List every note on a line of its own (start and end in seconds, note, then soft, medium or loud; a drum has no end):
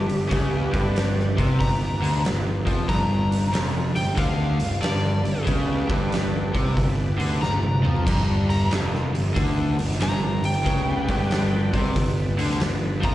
0.00 0.28 B3 medium
0.00 0.28 D4 medium
0.00 0.28 G4 medium
0.00 1.14 G4 loud
0.00 0.29 B4 medium
0.08 0.30 G1 medium
0.08 0.26 G2 medium
0.08 open hi-hat medium
0.29 0.71 C#2 medium
0.29 0.71 C#3 loud
0.29 2.86 G4 medium
0.29 2.87 B4 medium
0.29 2.87 D5 medium
0.29 kick loud
0.29 open hi-hat medium
0.34 2.87 B3 medium
0.71 1.34 G1 medium
0.71 1.35 G2 loud
0.71 kick loud
0.71 open hi-hat soft
0.96 snare loud
0.96 open hi-hat medium
1.20 snare soft
1.37 1.58 C2 medium
1.37 1.58 C3 loud
1.37 kick loud
1.37 open hi-hat soft
1.60 1.99 G1 medium
1.60 1.94 G2 medium
1.60 2.22 A#5 medium
1.60 kick medium
1.60 open hi-hat medium
2.02 2.22 D2 medium
2.02 2.23 D3 loud
2.02 open hi-hat medium
2.24 2.64 G1 medium
2.24 2.58 G2 medium
2.24 snare loud
2.24 open hi-hat medium
2.67 2.87 F2 medium
2.67 2.88 F3 medium
2.67 kick loud
2.67 open hi-hat medium
2.88 3.49 G1 medium
2.88 3.52 G2 loud
2.88 5.44 D4 medium
2.88 5.45 G4 medium
2.88 5.45 B4 medium
2.88 3.93 A#5 loud
2.88 kick loud
2.88 open hi-hat medium
3.32 open hi-hat medium
3.52 3.93 F1 medium
3.52 3.94 F2 loud
3.52 snare loud
3.52 open hi-hat medium
3.94 4.16 G1 medium
3.94 4.12 G2 medium
3.94 4.17 G5 medium
3.94 open hi-hat medium
4.16 4.57 D2 medium
4.16 4.58 D3 loud
4.16 4.80 F5 medium
4.16 kick loud
4.16 open hi-hat medium
4.59 4.81 G1 medium
4.59 4.77 G2 medium
4.59 open hi-hat medium
4.82 5.22 G1 medium
4.82 5.23 G2 loud
4.82 5.45 D5 loud
4.82 snare loud
4.82 open hi-hat medium
5.24 5.45 G1 medium
5.24 5.42 G2 medium
5.24 open hi-hat medium
5.44 5.87 C#2 medium
5.44 5.87 C#3 loud
5.44 8.04 B3 medium
5.44 8.04 G4 medium
5.44 8.04 D5 medium
5.44 kick loud
5.44 open hi-hat medium
5.49 8.04 B4 medium
5.87 6.50 G1 medium
5.87 6.52 G2 loud
5.87 kick loud
5.87 open hi-hat soft
6.12 snare loud
6.12 open hi-hat medium
6.53 6.75 C2 medium
6.53 6.75 C3 loud
6.53 kick loud
6.53 open hi-hat soft
6.76 7.16 G1 medium
6.76 7.11 G2 medium
6.76 kick loud
6.76 open hi-hat medium
7.19 7.40 D2 medium
7.19 7.40 D3 loud
7.19 open hi-hat medium
7.41 7.81 G1 medium
7.41 7.75 G2 medium
7.41 8.46 A#5 loud
7.41 snare medium
7.63 high tom medium
7.83 8.05 F2 medium
7.83 8.05 F3 medium
7.83 mid tom medium
7.96 floor tom medium
8.04 8.68 G1 medium
8.04 8.70 G2 medium
8.04 10.63 B3 medium
8.04 10.62 D4 medium
8.04 10.63 G4 medium
8.04 kick loud
8.04 open hi-hat medium
8.04 crash medium
8.50 8.71 A#5 loud
8.50 open hi-hat medium
8.70 9.10 F1 medium
8.70 9.12 F2 loud
8.70 snare loud
8.70 open hi-hat medium
8.95 snare soft
9.13 9.34 G1 medium
9.13 9.31 G2 medium
9.13 open hi-hat medium
9.34 9.76 D2 medium
9.34 9.76 D3 loud
9.34 kick loud
9.34 open hi-hat medium
9.78 9.99 G1 medium
9.78 9.96 G2 medium
9.78 open hi-hat medium
9.91 snare soft
10.01 10.40 G1 medium
10.01 10.42 G2 loud
10.01 10.43 A#5 loud
10.01 snare loud
10.01 open hi-hat medium
10.43 10.64 G1 medium
10.43 10.61 G2 medium
10.43 11.70 G5 loud
10.43 open hi-hat medium
10.64 11.06 C#2 loud
10.64 11.07 C#3 loud
10.64 13.15 B3 medium
10.64 13.15 G4 medium
10.64 13.15 B4 medium
10.64 13.15 D5 medium
10.64 kick medium
10.64 open hi-hat medium
11.08 11.70 G1 loud
11.08 11.72 G2 loud
11.08 kick medium
11.08 open hi-hat medium
11.31 snare loud
11.31 open hi-hat medium
11.73 11.94 C2 medium
11.73 11.95 C3 loud
11.73 kick loud
11.73 open hi-hat medium
11.95 12.36 G1 medium
11.95 12.30 G2 medium
11.95 kick loud
11.95 open hi-hat medium
12.38 12.59 D2 medium
12.38 12.60 D3 loud
12.38 open hi-hat medium
12.50 snare soft
12.60 13.00 G1 medium
12.60 12.95 G2 medium
12.60 snare loud
12.60 open hi-hat medium
13.02 13.15 F2 medium
13.02 13.15 F3 loud
13.02 13.15 A#5 loud
13.02 kick loud
13.02 open hi-hat medium